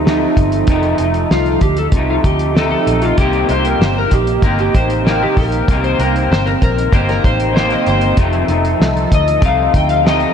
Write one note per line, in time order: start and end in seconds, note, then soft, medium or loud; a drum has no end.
0.00 0.25 D2 loud
0.00 3.13 F3 medium
0.00 0.99 D#4 medium
0.00 8.14 D#4 medium
0.00 3.14 A4 medium
0.05 0.67 C3 medium
0.05 0.68 A3 medium
0.05 0.69 D#4 medium
0.05 snare loud
0.37 0.62 G1 medium
0.37 kick medium
0.37 closed hi-hat medium
0.52 closed hi-hat soft
0.67 0.93 F1 medium
0.67 0.99 F2 medium
0.67 0.99 C3 medium
0.67 1.00 D#3 medium
0.67 0.99 A3 medium
0.67 0.97 D#4 medium
0.67 kick loud
0.67 closed hi-hat medium
0.83 closed hi-hat soft
0.98 1.24 F1 medium
0.98 1.93 A3 soft
0.98 1.96 D#4 medium
0.98 closed hi-hat medium
1.14 closed hi-hat soft
1.31 1.56 C2 medium
1.31 1.60 F4 medium
1.31 snare loud
1.46 closed hi-hat soft
1.61 1.87 D2 medium
1.61 1.77 G4 medium
1.61 kick loud
1.61 closed hi-hat medium
1.77 1.86 A4 medium
1.77 closed hi-hat medium
1.92 2.18 C2 medium
1.92 2.53 C3 medium
1.92 2.56 A3 medium
1.92 kick loud
1.92 closed hi-hat medium
1.96 2.58 D#4 medium
2.10 2.15 F4 medium
2.24 2.74 D2 medium
2.24 2.56 G4 medium
2.24 kick medium
2.24 closed hi-hat medium
2.39 closed hi-hat medium
2.55 3.17 C3 medium
2.55 3.19 A3 medium
2.55 3.20 D#4 medium
2.55 2.69 A4 medium
2.55 snare loud
2.71 3.03 A4 medium
2.87 3.12 A#1 medium
2.87 closed hi-hat medium
3.02 3.18 F4 medium
3.02 closed hi-hat soft
3.18 3.43 C2 medium
3.18 8.14 C3 medium
3.18 3.49 C3 medium
3.18 3.50 D#3 medium
3.18 5.66 A#3 medium
3.18 3.50 A#3 medium
3.18 3.49 C4 medium
3.18 3.50 G4 loud
3.18 3.47 G4 medium
3.18 kick loud
3.18 closed hi-hat medium
3.33 closed hi-hat soft
3.49 3.74 C2 medium
3.49 4.42 A#3 soft
3.49 4.44 C4 soft
3.49 4.43 G4 soft
3.49 3.65 C5 medium
3.49 closed hi-hat medium
3.65 3.81 A#4 medium
3.65 closed hi-hat medium
3.79 4.05 G1 medium
3.79 3.97 C5 medium
3.79 snare loud
3.98 4.13 A#4 medium
4.11 4.37 A#1 medium
4.11 4.41 G4 medium
4.11 kick medium
4.11 closed hi-hat medium
4.27 closed hi-hat medium
4.42 4.68 G1 medium
4.42 5.04 D#3 medium
4.42 5.05 A#3 medium
4.42 5.07 C4 medium
4.42 5.07 G4 medium
4.42 4.60 A#4 loud
4.42 kick loud
4.42 closed hi-hat medium
4.59 4.75 G4 medium
4.59 closed hi-hat soft
4.75 5.24 A1 loud
4.75 5.06 C5 medium
4.75 kick loud
4.75 closed hi-hat medium
4.90 closed hi-hat medium
5.05 5.69 D#3 medium
5.05 5.68 A#3 medium
5.05 5.70 C4 medium
5.05 5.69 G4 medium
5.05 5.22 A#4 medium
5.05 snare loud
5.23 5.38 G4 medium
5.37 5.62 A#1 medium
5.37 5.84 A#4 loud
5.37 kick medium
5.37 open hi-hat medium
5.52 closed hi-hat medium
5.68 5.93 C2 loud
5.68 5.99 C3 medium
5.68 6.00 D#3 medium
5.68 6.00 A#3 medium
5.68 8.15 C4 medium
5.68 6.00 C4 medium
5.68 5.98 G4 medium
5.68 kick loud
5.68 closed hi-hat medium
5.84 6.00 C5 medium
5.84 closed hi-hat soft
5.99 6.31 C2 medium
5.99 6.91 A#3 soft
5.99 6.93 C4 soft
5.99 6.93 G4 soft
5.99 6.32 A#4 medium
5.99 closed hi-hat medium
6.16 closed hi-hat soft
6.29 6.55 G1 medium
6.29 6.47 C5 loud
6.29 snare loud
6.46 6.51 A#4 medium
6.46 closed hi-hat soft
6.62 6.87 A#1 medium
6.62 6.95 A#4 medium
6.62 kick medium
6.62 closed hi-hat medium
6.78 closed hi-hat soft
6.92 7.18 G1 medium
6.92 7.52 D#3 medium
6.92 7.53 A#3 medium
6.92 7.55 C4 medium
6.92 7.55 G4 medium
6.92 7.08 C5 loud
6.92 kick loud
6.92 closed hi-hat medium
7.09 7.25 A#4 loud
7.09 snare soft
7.09 closed hi-hat soft
7.24 7.74 A1 medium
7.24 7.55 C5 loud
7.24 kick loud
7.24 closed hi-hat medium
7.40 closed hi-hat medium
7.53 8.18 D#3 medium
7.53 8.17 A#3 medium
7.53 8.19 C4 medium
7.53 8.18 G4 medium
7.53 7.72 C5 loud
7.53 snare loud
7.70 7.87 D#5 loud
7.70 closed hi-hat soft
7.86 8.12 G1 medium
7.86 8.16 C5 medium
7.86 closed hi-hat medium
8.01 closed hi-hat soft
8.16 8.42 F1 loud
8.16 8.49 F2 medium
8.16 8.49 C3 medium
8.16 8.49 D#3 medium
8.16 10.34 F3 medium
8.16 8.48 A3 medium
8.16 10.34 D#4 medium
8.16 8.47 D#4 medium
8.16 10.34 A4 loud
8.16 kick loud
8.16 closed hi-hat medium
8.33 closed hi-hat soft
8.48 8.74 F1 loud
8.48 9.42 A3 medium
8.48 9.44 D#4 medium
8.48 closed hi-hat medium
8.65 closed hi-hat soft
8.80 9.05 C2 medium
8.80 snare loud
8.97 closed hi-hat soft
9.12 9.37 D2 medium
9.12 9.45 D#5 medium
9.12 kick medium
9.12 closed hi-hat medium
9.28 closed hi-hat medium
9.41 9.67 C2 loud
9.41 10.03 C3 medium
9.41 10.05 A3 medium
9.41 10.07 D#4 medium
9.41 kick loud
9.41 closed hi-hat medium
9.45 9.76 F5 loud
9.74 10.24 D2 loud
9.74 9.90 G5 medium
9.74 kick loud
9.74 closed hi-hat medium
9.89 10.05 F5 loud
9.89 closed hi-hat medium
10.04 10.34 C3 medium
10.04 10.34 A3 medium
10.04 10.34 D#4 medium
10.04 10.34 D#5 loud
10.04 snare loud
10.20 closed hi-hat soft